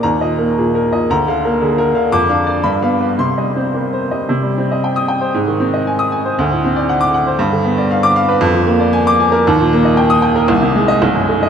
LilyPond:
<<
  \new Staff \with { instrumentName = "Grand piano" } { \time 2/4 \key bes \mixolydian \tempo 4 = 116 << { bes''8 r4. | bes''8 r4. | \key c \minor d'''8 r8 b''8 r8 | c'''8 r4. |
r4 r16 ees'''8 r16 | r4 r16 ees'''8 r16 | r4 r16 d'''8 r16 | r4 r16 d'''8 r16 |
\key ees \major r4 r16 d'''8 r16 | r4 r16 ees'''8 r16 | r8. ees''16 r8. dis''16 | } \\ { \tuplet 3/2 { r8 ees''8 bes'8 aes'8 bes'8 ees''8 } | \tuplet 3/2 { r8 f''8 bes'8 aes'8 bes'8 f''8 } | \tuplet 3/2 { r8 f''8 d''8 r8 f''8 b'8 } | \tuplet 3/2 { r8 ees''8 c''8 bes'8 c''8 ees''8 } |
r2 | r2 | r2 | r2 |
r2 | r2 | r2 | } >> }
  \new Staff \with { instrumentName = "Grand piano" } { \time 2/4 \key bes \mixolydian \tuplet 3/2 { ees,8 bes,8 bes8 bes,4 bes,8 } | \tuplet 3/2 { d,8 d8 bes8 d4 d8 } | \key c \minor \tuplet 3/2 { f,8 d'4 g,8 b4 } | \tuplet 3/2 { c8 g8 c'8 g4 g8 } |
c16 g16 c'16 ees''16 g''8 g''16 c''16 | aes,16 ees16 c'16 ees''16 aes''8 aes''16 c''16 | d,16 a,16 c'16 d''16 fis''8 fis''16 c''16 | g,16 d16 b16 d''16 f''8 f''16 b'16 |
\key ees \major f,16 f16 bes16 d''16 aes''8 aes''16 bes'16 | ees,16 bes,16 bes16 ees''16 g''8 g''16 bes'16 | c,16 c16 aes8 b,,16 fis,16 a8 | }
>>